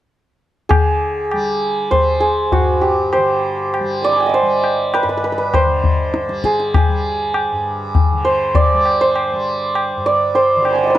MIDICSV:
0, 0, Header, 1, 4, 480
1, 0, Start_track
1, 0, Tempo, 603015
1, 558, Time_signature, 5, 2, 24, 8
1, 8743, End_track
2, 0, Start_track
2, 0, Title_t, "Santur"
2, 0, Program_c, 0, 15
2, 551, Note_on_c, 0, 68, 87
2, 1520, Note_on_c, 0, 72, 84
2, 1751, Note_off_c, 0, 68, 0
2, 1754, Note_on_c, 0, 68, 71
2, 2008, Note_on_c, 0, 66, 75
2, 2240, Note_on_c, 0, 67, 67
2, 2288, Note_off_c, 0, 66, 0
2, 2288, Note_off_c, 0, 68, 0
2, 2488, Note_off_c, 0, 72, 0
2, 2491, Note_on_c, 0, 72, 73
2, 3199, Note_on_c, 0, 87, 36
2, 3219, Note_on_c, 0, 74, 88
2, 3233, Note_on_c, 0, 86, 37
2, 3255, Note_on_c, 0, 84, 45
2, 3280, Note_on_c, 0, 83, 47
2, 3310, Note_on_c, 0, 80, 48
2, 3327, Note_off_c, 0, 72, 0
2, 3343, Note_on_c, 0, 79, 53
2, 3357, Note_off_c, 0, 67, 0
2, 3366, Note_on_c, 0, 78, 52
2, 3392, Note_on_c, 0, 75, 58
2, 3413, Note_off_c, 0, 74, 0
2, 3416, Note_on_c, 0, 74, 55
2, 3440, Note_off_c, 0, 86, 0
2, 3453, Note_on_c, 0, 72, 82
2, 3464, Note_off_c, 0, 87, 0
2, 3501, Note_off_c, 0, 83, 0
2, 3935, Note_on_c, 0, 71, 79
2, 3983, Note_off_c, 0, 72, 0
2, 3983, Note_off_c, 0, 84, 0
2, 4000, Note_off_c, 0, 71, 0
2, 4004, Note_on_c, 0, 71, 55
2, 4048, Note_off_c, 0, 71, 0
2, 4051, Note_on_c, 0, 71, 60
2, 4115, Note_off_c, 0, 71, 0
2, 4118, Note_on_c, 0, 71, 56
2, 4167, Note_off_c, 0, 71, 0
2, 4171, Note_on_c, 0, 71, 65
2, 4233, Note_off_c, 0, 71, 0
2, 4236, Note_on_c, 0, 71, 52
2, 4278, Note_off_c, 0, 71, 0
2, 4281, Note_on_c, 0, 71, 65
2, 4411, Note_on_c, 0, 72, 85
2, 4459, Note_off_c, 0, 71, 0
2, 4895, Note_off_c, 0, 80, 0
2, 4991, Note_off_c, 0, 79, 0
2, 5080, Note_off_c, 0, 78, 0
2, 5133, Note_on_c, 0, 68, 70
2, 5276, Note_off_c, 0, 75, 0
2, 5375, Note_off_c, 0, 74, 0
2, 5378, Note_off_c, 0, 68, 0
2, 5381, Note_on_c, 0, 68, 64
2, 6513, Note_off_c, 0, 72, 0
2, 6564, Note_on_c, 0, 72, 85
2, 6805, Note_on_c, 0, 74, 88
2, 7168, Note_off_c, 0, 72, 0
2, 7171, Note_on_c, 0, 72, 84
2, 7784, Note_off_c, 0, 68, 0
2, 8004, Note_off_c, 0, 74, 0
2, 8007, Note_on_c, 0, 74, 85
2, 8236, Note_off_c, 0, 72, 0
2, 8239, Note_on_c, 0, 72, 83
2, 8456, Note_on_c, 0, 86, 36
2, 8487, Note_on_c, 0, 84, 40
2, 8520, Note_on_c, 0, 83, 39
2, 8537, Note_on_c, 0, 80, 43
2, 8558, Note_on_c, 0, 79, 47
2, 8582, Note_on_c, 0, 78, 42
2, 8625, Note_on_c, 0, 75, 47
2, 8650, Note_off_c, 0, 74, 0
2, 8653, Note_on_c, 0, 74, 46
2, 8673, Note_off_c, 0, 72, 0
2, 8673, Note_off_c, 0, 86, 0
2, 8677, Note_on_c, 0, 72, 52
2, 8713, Note_on_c, 0, 71, 75
2, 8724, Note_off_c, 0, 83, 0
2, 8743, Note_off_c, 0, 71, 0
2, 8743, Note_off_c, 0, 72, 0
2, 8743, Note_off_c, 0, 74, 0
2, 8743, Note_off_c, 0, 75, 0
2, 8743, Note_off_c, 0, 78, 0
2, 8743, Note_off_c, 0, 79, 0
2, 8743, Note_off_c, 0, 80, 0
2, 8743, Note_off_c, 0, 84, 0
2, 8743, End_track
3, 0, Start_track
3, 0, Title_t, "Tanpura"
3, 0, Program_c, 1, 104
3, 559, Note_on_c, 1, 50, 53
3, 1062, Note_on_c, 1, 55, 54
3, 1540, Note_off_c, 1, 55, 0
3, 1540, Note_on_c, 1, 55, 53
3, 2039, Note_on_c, 1, 43, 53
3, 2520, Note_off_c, 1, 50, 0
3, 2523, Note_on_c, 1, 50, 53
3, 3027, Note_off_c, 1, 55, 0
3, 3027, Note_on_c, 1, 55, 50
3, 3521, Note_off_c, 1, 55, 0
3, 3521, Note_on_c, 1, 55, 50
3, 4004, Note_off_c, 1, 43, 0
3, 4007, Note_on_c, 1, 43, 53
3, 4496, Note_off_c, 1, 50, 0
3, 4499, Note_on_c, 1, 50, 50
3, 4999, Note_off_c, 1, 55, 0
3, 4999, Note_on_c, 1, 55, 51
3, 5482, Note_off_c, 1, 55, 0
3, 5482, Note_on_c, 1, 55, 53
3, 5980, Note_off_c, 1, 43, 0
3, 5984, Note_on_c, 1, 43, 51
3, 6462, Note_off_c, 1, 50, 0
3, 6466, Note_on_c, 1, 50, 55
3, 6956, Note_off_c, 1, 55, 0
3, 6956, Note_on_c, 1, 55, 52
3, 7425, Note_off_c, 1, 55, 0
3, 7425, Note_on_c, 1, 55, 52
3, 7930, Note_off_c, 1, 43, 0
3, 7933, Note_on_c, 1, 43, 51
3, 8403, Note_off_c, 1, 50, 0
3, 8406, Note_on_c, 1, 50, 53
3, 8743, Note_off_c, 1, 43, 0
3, 8743, Note_off_c, 1, 50, 0
3, 8743, Note_off_c, 1, 55, 0
3, 8743, End_track
4, 0, Start_track
4, 0, Title_t, "Tabla"
4, 562, Note_on_c, 9, 60, 84
4, 562, Note_on_c, 9, 64, 81
4, 641, Note_off_c, 9, 60, 0
4, 641, Note_off_c, 9, 64, 0
4, 1047, Note_on_c, 9, 60, 66
4, 1126, Note_off_c, 9, 60, 0
4, 1528, Note_on_c, 9, 63, 74
4, 1528, Note_on_c, 9, 64, 59
4, 1607, Note_off_c, 9, 63, 0
4, 1607, Note_off_c, 9, 64, 0
4, 2006, Note_on_c, 9, 63, 70
4, 2006, Note_on_c, 9, 64, 64
4, 2086, Note_off_c, 9, 63, 0
4, 2086, Note_off_c, 9, 64, 0
4, 2489, Note_on_c, 9, 60, 72
4, 2568, Note_off_c, 9, 60, 0
4, 2975, Note_on_c, 9, 60, 69
4, 3055, Note_off_c, 9, 60, 0
4, 3448, Note_on_c, 9, 63, 66
4, 3528, Note_off_c, 9, 63, 0
4, 3690, Note_on_c, 9, 60, 55
4, 3770, Note_off_c, 9, 60, 0
4, 3929, Note_on_c, 9, 60, 68
4, 4009, Note_off_c, 9, 60, 0
4, 4407, Note_on_c, 9, 60, 71
4, 4407, Note_on_c, 9, 64, 65
4, 4487, Note_off_c, 9, 60, 0
4, 4487, Note_off_c, 9, 64, 0
4, 4647, Note_on_c, 9, 64, 52
4, 4727, Note_off_c, 9, 64, 0
4, 4886, Note_on_c, 9, 62, 75
4, 4965, Note_off_c, 9, 62, 0
4, 5009, Note_on_c, 9, 62, 50
4, 5089, Note_off_c, 9, 62, 0
4, 5125, Note_on_c, 9, 37, 58
4, 5205, Note_off_c, 9, 37, 0
4, 5251, Note_on_c, 9, 62, 50
4, 5331, Note_off_c, 9, 62, 0
4, 5368, Note_on_c, 9, 60, 85
4, 5368, Note_on_c, 9, 64, 80
4, 5448, Note_off_c, 9, 60, 0
4, 5448, Note_off_c, 9, 64, 0
4, 5845, Note_on_c, 9, 60, 72
4, 5924, Note_off_c, 9, 60, 0
4, 6327, Note_on_c, 9, 63, 70
4, 6327, Note_on_c, 9, 64, 65
4, 6406, Note_off_c, 9, 63, 0
4, 6406, Note_off_c, 9, 64, 0
4, 6803, Note_on_c, 9, 63, 73
4, 6803, Note_on_c, 9, 64, 60
4, 6883, Note_off_c, 9, 63, 0
4, 6883, Note_off_c, 9, 64, 0
4, 7048, Note_on_c, 9, 60, 55
4, 7128, Note_off_c, 9, 60, 0
4, 7287, Note_on_c, 9, 60, 68
4, 7367, Note_off_c, 9, 60, 0
4, 7764, Note_on_c, 9, 60, 74
4, 7843, Note_off_c, 9, 60, 0
4, 8238, Note_on_c, 9, 63, 69
4, 8317, Note_off_c, 9, 63, 0
4, 8478, Note_on_c, 9, 60, 55
4, 8558, Note_off_c, 9, 60, 0
4, 8719, Note_on_c, 9, 62, 72
4, 8743, Note_off_c, 9, 62, 0
4, 8743, End_track
0, 0, End_of_file